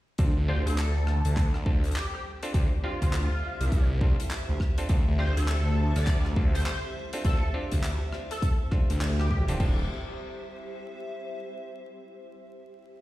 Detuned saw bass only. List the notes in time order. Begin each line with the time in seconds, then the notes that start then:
0.19 D2
0.37 D2
0.66 D2
1.25 D2
1.66 D2
2.54 D2
3.02 D2
3.60 C2
4.49 D2
4.89 D2
5.08 D2
5.37 D2
5.96 D2
6.36 D2
7.25 D2
7.72 D2
8.90 D2
9.60 D1